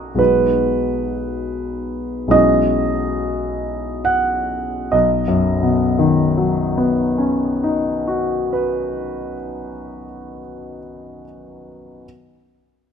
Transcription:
0.00 0.11 D#4 soft
0.00 0.12 F#4 soft
0.00 0.15 A#5 soft
0.00 0.16 C#6 soft
0.00 0.18 D#6 soft
0.00 0.19 F#6 soft
0.15 2.26 B1 soft
0.15 2.27 G#3 soft
0.15 2.27 B3 soft
0.15 2.28 D#4 soft
0.15 2.28 F#4 soft
0.19 2.32 B4 medium
2.27 4.86 B1 soft
2.27 4.86 G#3 soft
2.27 4.87 C#4 soft
2.27 4.87 E4 soft
2.27 4.88 F#4 soft
2.27 4.04 D#5 medium
4.05 4.92 F#5 medium
4.92 9.34 B1 soft
4.92 9.33 D#5 soft
5.28 9.69 F#2 soft
5.62 10.04 B2 soft
5.99 10.40 D#3 soft
6.37 10.79 F#3 soft
6.78 11.19 B3 soft
7.18 11.23 C#4 soft
7.63 11.24 D#4 soft
8.07 11.24 F#4 soft
8.53 11.23 B4 soft

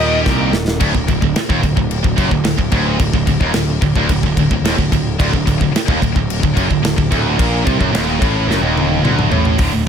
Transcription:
0.00 0.24 D#1 medium
0.00 0.50 D#2 medium
0.00 0.53 D#2 medium
0.00 0.52 A#2 medium
0.00 0.52 D#3 medium
0.00 0.79 D#3 medium
0.00 0.78 A#3 medium
0.00 0.77 D#4 medium
0.00 0.78 G4 medium
0.00 0.07 G4 medium
0.00 0.19 D#5 medium
0.07 0.14 G3 medium
0.07 0.15 G4 medium
0.14 0.22 G3 medium
0.14 0.23 G4 medium
0.22 0.51 C2 medium
0.22 0.30 G3 medium
0.22 0.30 G4 medium
0.22 kick loud
0.22 snare medium
0.30 0.37 G3 medium
0.30 0.38 G4 medium
0.37 0.44 G3 medium
0.37 0.45 G4 medium
0.45 0.52 G3 medium
0.45 0.53 G4 medium
0.53 0.78 D#1 medium
0.53 snare loud
0.68 snare loud
0.80 0.94 D1 loud
0.80 0.93 D2 loud
0.80 kick loud
0.80 crash medium
0.94 1.07 D1 medium
0.94 1.06 D2 medium
0.94 kick medium
1.08 1.21 D1 medium
1.08 1.20 D2 medium
1.08 kick medium
1.08 crash medium
1.21 1.35 D1 medium
1.21 1.35 D2 medium
1.21 kick medium
1.36 muted picked electric bass stroke soft
1.36 muted distorted electric guitar stroke medium
1.36 snare loud
1.36 crash medium
1.49 1.62 D#1 loud
1.49 1.62 D#2 loud
1.49 kick loud
1.63 1.76 D1 medium
1.63 1.75 D2 medium
1.63 kick medium
1.63 crash medium
1.76 2.02 D1 medium
1.76 1.98 D2 medium
1.76 kick medium
1.91 crash medium
2.04 2.17 D1 medium
2.04 2.17 D2 medium
2.04 kick medium
2.17 2.30 F#1 medium
2.17 2.30 F#2 loud
2.17 kick medium
2.17 crash medium
2.31 2.44 D1 medium
2.31 2.44 D2 medium
2.31 kick medium
2.45 2.57 D1 medium
2.45 2.58 D2 medium
2.45 snare loud
2.45 crash medium
2.58 2.71 D1 medium
2.58 2.71 D2 medium
2.58 kick medium
2.72 2.98 D1 loud
2.72 2.98 D2 loud
2.72 kick medium
2.72 crash medium
2.99 3.13 D1 medium
2.99 3.13 D2 medium
2.99 kick medium
2.99 crash medium
3.13 3.26 D1 medium
3.13 3.25 D2 medium
3.13 kick medium
3.26 3.40 D1 medium
3.26 3.40 D2 medium
3.26 kick medium
3.26 crash medium
3.40 3.54 D#1 medium
3.40 3.53 D#2 loud
3.40 kick medium
3.54 3.80 D1 medium
3.54 3.76 D2 medium
3.54 snare loud
3.54 crash medium
3.81 3.95 D1 medium
3.81 3.95 D2 medium
3.81 kick medium
3.81 crash medium
3.96 4.09 D1 medium
3.96 4.09 D2 loud
3.96 kick medium
4.09 4.22 D1 medium
4.09 4.22 D2 medium
4.09 kick medium
4.09 crash medium
4.22 4.36 D1 medium
4.22 4.37 D2 medium
4.22 kick medium
4.37 4.50 D1 medium
4.37 4.52 D2 medium
4.37 kick medium
4.37 crash medium
4.51 4.61 D1 medium
4.51 4.65 D2 medium
4.51 kick medium
4.62 4.76 D#1 medium
4.62 4.78 D#2 loud
4.62 snare loud
4.62 crash medium
4.78 4.91 D1 medium
4.78 4.91 D2 medium
4.78 kick medium
4.92 5.18 D1 medium
4.92 5.14 D2 medium
4.92 kick medium
4.92 crash medium
5.19 5.32 D1 loud
5.19 5.30 D2 loud
5.19 kick loud
5.19 crash medium
5.31 5.46 D1 medium
5.31 5.44 D2 medium
5.31 kick medium
5.46 5.60 D1 medium
5.46 5.57 D2 medium
5.46 kick medium
5.46 crash medium
5.58 5.72 D1 medium
5.58 5.71 D2 medium
5.58 kick medium
5.72 muted distorted electric guitar stroke medium
5.72 muted picked electric bass stroke soft
5.72 crash medium
5.76 muted distorted electric guitar stroke medium
5.76 snare loud
5.86 6.01 D#1 loud
5.86 5.99 D#2 loud
5.86 kick loud
6.00 6.15 D1 medium
6.00 6.11 D2 medium
6.00 kick medium
6.00 crash medium
6.12 6.41 D1 medium
6.12 6.36 D2 medium
6.12 kick medium
6.17 6.38 D2 medium
6.30 crash medium
6.40 6.56 D1 medium
6.40 6.53 D2 medium
6.40 kick medium
6.44 6.57 D2 medium
6.54 6.69 F#1 medium
6.54 6.68 F#2 loud
6.54 kick medium
6.54 crash medium
6.68 6.82 D1 medium
6.68 6.81 D2 medium
6.68 kick medium
6.82 6.96 D1 medium
6.82 6.95 D2 medium
6.82 snare loud
6.82 crash medium
6.96 7.11 D1 medium
6.96 7.10 D2 medium
6.96 kick medium
7.11 7.37 D1 medium
7.11 7.38 D2 loud
7.11 kick medium
7.11 crash medium
7.39 7.64 A#1 loud
7.39 7.64 A#2 loud
7.39 kick loud
7.39 crash medium
7.65 7.79 C2 loud
7.65 7.78 C3 loud
7.65 kick loud
7.65 crash medium
7.78 7.92 F#1 medium
7.78 7.92 F#2 loud
7.78 kick medium
7.93 8.19 D#1 loud
7.93 8.20 D#2 loud
7.93 snare loud
7.93 crash medium
8.21 8.47 A1 medium
8.21 8.47 A2 loud
8.21 kick loud
8.21 crash medium
8.48 8.60 F#1 medium
8.48 8.62 F#2 loud
8.48 snare medium
8.61 9.00 D#1 loud
8.61 9.03 D#2 medium
8.77 high tom medium
9.03 9.29 D1 medium
9.03 9.30 D2 loud
9.03 mid tom medium
9.19 mid tom medium
9.30 9.56 A1 loud
9.30 9.58 A2 loud
9.30 floor tom loud
9.45 floor tom medium
9.58 9.79 D1 medium
9.58 9.71 D2 medium
9.58 9.71 A2 medium
9.58 9.72 D3 medium
9.58 kick loud
9.58 open hi-hat medium
9.73 9.87 D2 medium
9.73 9.86 A2 medium

